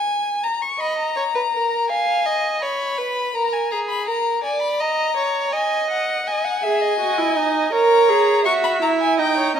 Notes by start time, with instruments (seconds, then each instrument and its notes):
Already playing: violin G#5
0.43 violin A#5
0.62 violin C#6
0.79 violin D#5 B5
0.98 violin A#5
1.16 violin C#5
1.35 violin B4
1.53 violin A#4
1.90 violin F5 G#5
2.26 violin D#5
2.62 violin C#5 B5
2.98 violin B4
3.35 violin A#4 A#5
3.53 violin G#5
3.71 violin G#4 A#5
3.89 violin B5
4.07 violin A#4 A#5
4.43 violin D5 G#5
4.62 violin B5
4.80 violin D#5 A#5
5.17 violin C#5
5.53 violin D#5 G#5
5.90 violin F#5
6.26 violin D#5 G#5
6.44 violin F#5
6.63 viola G#4, violin E5
6.81 violin D#5
7.00 viola F#4
7.18 viola E4
7.36 viola D#4
7.72 viola A#4, violin C#5 A#5
8.09 viola G#4
8.45 viola F#4, violin E5 C#6
8.64 violin B5
8.82 viola E4, violin A#5
9.01 violin G#5
9.19 viola D#4, violin D#5 G5
9.37 violin C#5
9.55 viola C#4, violin D#5 A#5